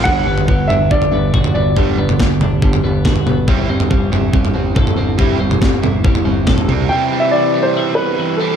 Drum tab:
SD |----------------|----o-------o---|----------------|----o-------o---|
T2 |------------o---|---o--o-----o-o-|------------o---|---o--o-----o-o-|
FT |o--o--o--o---o--|o--o--o--o---o--|o--o--o--o---o--|o--o--o--o---o--|
BD |o---o---o---o---|o---o---o---o---|o---o---o---o---|o---o---o---o---|

SD |----------------|
T2 |----------------|
FT |----------------|
BD |----------------|